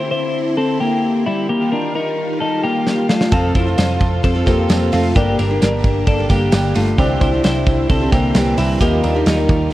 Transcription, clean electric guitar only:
0.00 0.11 E4 medium
0.00 0.10 C5 medium
0.11 0.55 E4 medium
0.11 0.54 C5 medium
0.57 0.81 C4 medium
0.57 0.80 A4 medium
0.80 1.24 A#3 medium
0.80 1.23 G4 medium
1.26 1.49 G3 medium
1.26 1.49 E4 medium
1.49 1.72 A#3 medium
1.49 1.71 G4 loud
1.72 1.95 D4 medium
1.72 1.94 A#4 medium
1.95 2.38 D#4 medium
1.95 2.38 A#4 medium
2.41 2.64 D#4 medium
2.41 2.63 A4 medium
2.64 3.07 A#3 medium
2.64 3.07 G4 medium
3.09 3.33 A3 medium
3.09 3.32 F4 medium
3.32 3.56 C4 medium
3.32 3.55 A4 loud
3.55 3.78 E4 medium
3.55 3.77 C5 medium
3.78 4.21 F4 medium
3.78 4.21 C5 medium
4.24 4.47 C4 medium
4.24 4.46 A4 medium
4.47 4.90 A#3 medium
4.47 4.90 G4 medium
4.93 5.16 A3 medium
4.93 5.16 F4 loud
5.16 5.39 A#3 medium
5.16 5.38 G4 loud
5.39 5.61 D4 medium
5.39 5.60 A#4 medium
5.62 6.05 D4 medium
5.62 6.04 A#4 medium
6.07 6.30 D4 medium
6.07 6.29 A4 medium
6.30 6.73 A#3 medium
6.30 6.73 G4 medium
6.75 6.98 A3 medium
6.75 6.98 F4 medium
6.98 7.21 C4 medium
6.98 7.20 G4 loud
7.21 7.44 E4 medium
7.21 7.43 C5 medium
7.44 7.87 E4 medium
7.44 7.87 C5 medium
7.89 8.12 C4 medium
7.89 8.12 A4 medium
8.12 8.56 A#3 medium
8.12 8.55 G4 medium
8.58 8.81 G3 medium
8.58 8.81 E4 medium
8.81 9.04 A#3 medium
8.81 9.03 G4 loud
9.04 9.27 D4 medium
9.04 9.26 A#4 medium
9.27 9.70 D#4 medium
9.27 9.70 A#4 medium

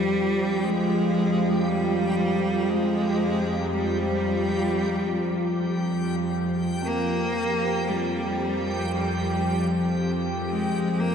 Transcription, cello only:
0.00 0.65 G3 loud
0.64 1.68 G#3 loud
1.66 2.71 G3 loud
2.69 3.74 G#3 loud
3.73 5.79 G3 medium
6.85 7.90 A#3 loud
7.89 8.91 G3 medium
8.92 9.90 G3 medium
10.49 11.01 G#3 medium
11.00 11.15 A#3 loud

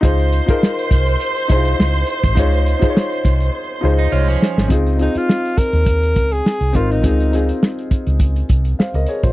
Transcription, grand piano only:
0.01 0.35 D#4 medium
0.01 0.35 F4 medium
0.01 0.36 G#4 medium
0.01 0.37 C5 medium
0.46 1.22 D#4 medium
0.46 1.23 F4 medium
0.46 1.23 G#4 medium
0.46 1.24 A#4 medium
1.48 2.14 D#4 medium
1.48 1.56 E4 medium
1.48 2.15 G#4 medium
1.48 2.16 C5 medium
1.56 2.18 F4 medium
2.35 2.69 D#4 medium
2.35 2.69 F4 medium
2.35 2.70 G#4 medium
2.39 2.71 C#5 medium
2.79 3.55 D#4 medium
2.79 3.56 F4 medium
2.79 3.56 G#4 medium
2.83 2.88 C5 medium
2.90 3.60 C#5 medium
3.81 4.47 D#4 medium
3.81 4.48 F4 medium
3.81 4.48 G#4 medium
3.81 4.49 C5 medium
4.12 4.66 C#5 medium
4.68 4.91 C4 medium
4.68 4.92 D#4 medium
4.68 4.93 F4 medium
4.72 4.93 G#4 medium
4.97 5.85 C4 medium
4.97 5.85 D#4 medium
4.97 5.86 F4 medium
4.97 5.87 G#4 medium
6.73 6.96 C4 medium
6.73 6.96 D#4 medium
6.73 6.97 F4 medium
6.73 6.98 A#4 medium
7.01 7.25 C4 medium
7.01 7.25 D#4 medium
7.01 7.26 F4 medium
7.01 7.27 G#4 medium
7.31 8.19 C4 medium
7.31 8.19 D#4 medium
7.31 8.20 F4 medium
7.31 8.21 G#4 medium
8.79 8.94 C5 soft
8.79 8.94 F5 medium
8.95 9.08 A#4 soft
8.95 9.08 D#5 medium
9.08 9.23 G#4 medium
9.08 9.23 C#5 medium
9.24 9.33 F4 soft
9.24 9.33 C5 medium

